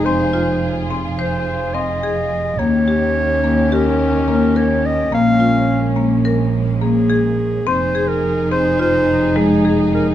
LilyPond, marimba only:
\new Staff \with { instrumentName = "Marimba" } { \time 9/8 \key f \minor \tempo 4. = 71 c'8 f'4 c'8 c''4 c'8 aes'4 | bes8 g'4 bes8 g'4 bes8 bes'4 | bes8 f'4 bes8 bes'4 bes8 aes'4 | c'8 aes'4 c'8 f'4 aes8 aes'4 | }